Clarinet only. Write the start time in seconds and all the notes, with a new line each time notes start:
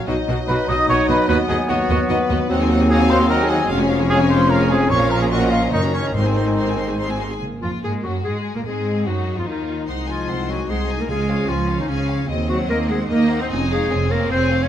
0.09 D#4
1.29 B3
2.50 C4
3.71 C#4
6.14 D#4
7.62 F4
7.84 G#4
8.04 F#4
8.24 G#4
8.56 A#4
8.66 G#4
9.07 F#4
9.39 F4
9.48 D#4
10.09 F4
10.50 F#4
10.70 G#4
11.02 A#4
11.10 G#4
11.49 F4
11.80 D#4
11.90 C#4
12.49 F#4
12.70 A#4
12.90 G#4
13.10 A#4
13.42 C5
13.71 G#4
14.11 A#4
14.32 C5
14.63 C#5